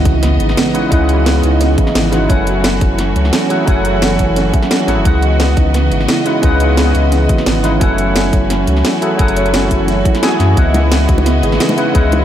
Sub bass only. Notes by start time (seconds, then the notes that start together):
0.05 C#2
0.40 G#1
0.92 C#2
1.43 C#2
1.95 G#1
2.30 F#1
2.81 F#1
3.16 C#2
3.67 F#1
4.19 F#1
4.88 A1
4.97 E1
5.05 C#2
5.57 C#2
5.91 G#1
6.43 C#2
6.95 C#2
7.47 G#1
7.81 F#1
8.33 F#1
8.67 C#2
9.19 F#1
9.71 F#1
10.40 F#2
10.57 C#2
11.09 C#2
11.43 G#1
11.95 C#2